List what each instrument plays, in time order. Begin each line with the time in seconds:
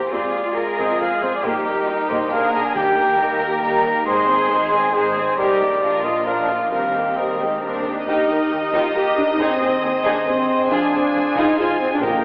Already playing: french horn section A#3 G4, violin section G4, cello section G4, trumpet C5
0.11 double bass section F2, french horn section G#3 F4, viola section C4, cello section F4, violin section F4 G#4, trumpet D5
0.56 cello section A#4
0.79 double bass section F2, viola section C4, trumpet D#5
1.00 double bass section F2, viola section C4, cello section G#4, trumpet F5
1.22 double bass section F2, viola section C4, trumpet C5
1.35 trumpet D5
1.44 double bass section A#1, french horn section G3 D#4, viola section A#3, violin section D#4 G4, cello section G4, trumpet A#4
1.89 cello section D#4
2.09 double bass section A#1, viola section A#3, trumpet C5
2.31 double bass section A#1, viola section A#3, french horn section A#3 D4, violin section D4 A#4, cello section G#4, trumpet F5
2.52 double bass section A#1, viola section A#3, trumpet A#5
2.65 trumpet G#5
2.75 double bass section D#2, timpani D#3, viola section G3, french horn section A#3 D#4, violin section D#4 G4, cello section G4, trumpet G5
2.97 viola section A#3, violin section G4 A#4
3.18 double bass section D#2, viola section G3, violin section D#4 G4, cello section A#4
3.41 viola section A#3, violin section G4 A#4
3.62 double bass section D#2, viola section G3, violin section D#4 G4, trumpet A#5
3.84 viola section A#3, violin section G4 A#4
4.06 double bass section G#1, viola section G#3, french horn section G#3, violin section D#4 C5, cello section G#4, trumpet C6
4.28 viola section C4, violin section C4 G#4
4.50 double bass section G#1, viola section G#3, violin section D#4 C5
4.72 viola section C4, violin section C4 G#4, trumpet G#5
4.94 double bass section G#1, viola section G#3, violin section D#4 C5, cello section G#4, trumpet C5
5.17 viola section C4, violin section C4 G#4
5.38 double bass section A#1, viola section G3, french horn section G3 D#4, violin section D#4 A#4, cello section G4, trumpet D5
5.61 viola section A#3, violin section G4
5.81 double bass section A#1, french horn section F3 D4, viola section F3, violin section D4 A#4, cello section F4
6.03 viola section A#3, violin section F4, trumpet D#5
6.25 double bass section A#1, viola section F3, cello section D4, violin section D4 A#4, trumpet F5
6.49 viola section A#3, violin section F4
6.71 double bass section D#2, viola section G3, french horn section G3 C4, violin section C4 A#4, cello section C4, trumpet F5
6.94 viola section A#3, violin section D#4 G4
7.16 double bass section D#2, french horn section G3, viola section G3, violin section C4 A#4, trumpet D#5
7.39 french horn section G#3, viola section A#3, violin section D#4 G4
7.60 double bass section D#2, viola section G3 D4, french horn section A#3 D4, violin section C4 A#4
7.85 viola section A#3, french horn section C4, violin section D#4 G4
8.06 cello section D#2, double bass section D#2, french horn section D#4, viola section D#4, violin section D#4 G4 D#5, clarinet G4, cor anglais A#4, flute section D#5
8.29 double bass section D#2, cello section D#2, violin section G4 A#4
8.51 cello section D#2, double bass section D#2, violin section G4
8.72 cello section D#2, double bass section D#2, violin section D#4 G4, viola section F4, french horn section F4
8.94 double bass section D#2, cello section D#2, clarinet G4, viola section G4, violin section G4 A#4, french horn section G4, cor anglais A#4, flute section D#5
9.17 french horn section D4, viola section D4
9.30 viola section D#4, french horn section D#4
9.37 cello section D#2, double bass section D#2, viola section C4, violin section D#4 G#4, clarinet G#4, cor anglais C5, flute section D#5
9.43 french horn section C4
9.61 double bass section D#2, cello section D#2, violin section G#4 C5
9.83 cello section D#2, double bass section D#2, violin section G#4
10.04 cello section D#2, double bass section D#2, viola section D4, french horn section D4, violin section D#4 G#4
10.26 double bass section D#2, cello section D#2, french horn section C4, viola section C4, violin section G#4 C5, clarinet G#4, cor anglais C5, flute section D#5
10.70 double bass section F1, cello section F2, french horn section D4, viola section D4, violin section F4 G#4 G#5, clarinet G#4, cor anglais C5, flute section F5
10.93 double bass section F1, cello section F2, violin section G#4 C5
11.14 double bass section F1, cello section F2, violin section G#4
11.36 double bass section F1, cello section F2, french horn section D#4, viola section D#4, violin section F4 G#4
11.58 double bass section F1, cello section F2, viola section F4, french horn section F4, clarinet G#4, violin section G#4 C5, cor anglais C5, flute section F5
11.81 french horn section C4, viola section C4
11.92 viola section D4, french horn section D4
12.00 double bass section A#1, cello section A#2, timpani A#2, viola section A#3, french horn section A#3, violin section G4 A#4 G5, clarinet A#4, cor anglais D#5, flute section G5